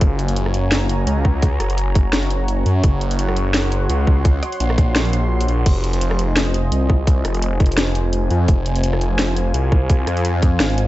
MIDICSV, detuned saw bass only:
0, 0, Header, 1, 2, 480
1, 0, Start_track
1, 0, Tempo, 352941
1, 18, Time_signature, 4, 2, 24, 8
1, 14791, End_track
2, 0, Start_track
2, 0, Title_t, "Detuned saw bass"
2, 0, Program_c, 0, 39
2, 18, Note_on_c, 0, 30, 93
2, 1441, Note_off_c, 0, 30, 0
2, 1454, Note_on_c, 0, 37, 102
2, 2158, Note_off_c, 0, 37, 0
2, 2176, Note_on_c, 0, 30, 98
2, 3599, Note_off_c, 0, 30, 0
2, 3615, Note_on_c, 0, 42, 100
2, 3839, Note_off_c, 0, 42, 0
2, 3859, Note_on_c, 0, 30, 94
2, 5281, Note_off_c, 0, 30, 0
2, 5297, Note_on_c, 0, 37, 100
2, 6000, Note_off_c, 0, 37, 0
2, 6260, Note_on_c, 0, 34, 100
2, 6721, Note_off_c, 0, 34, 0
2, 6739, Note_on_c, 0, 34, 99
2, 7441, Note_off_c, 0, 34, 0
2, 7459, Note_on_c, 0, 34, 95
2, 7681, Note_off_c, 0, 34, 0
2, 7698, Note_on_c, 0, 29, 101
2, 9120, Note_off_c, 0, 29, 0
2, 9138, Note_on_c, 0, 36, 96
2, 9840, Note_off_c, 0, 36, 0
2, 9858, Note_on_c, 0, 29, 96
2, 11281, Note_off_c, 0, 29, 0
2, 11298, Note_on_c, 0, 41, 101
2, 11521, Note_off_c, 0, 41, 0
2, 11538, Note_on_c, 0, 29, 96
2, 12961, Note_off_c, 0, 29, 0
2, 12976, Note_on_c, 0, 36, 100
2, 13679, Note_off_c, 0, 36, 0
2, 13696, Note_on_c, 0, 41, 95
2, 14399, Note_off_c, 0, 41, 0
2, 14418, Note_on_c, 0, 32, 90
2, 14791, Note_off_c, 0, 32, 0
2, 14791, End_track
0, 0, End_of_file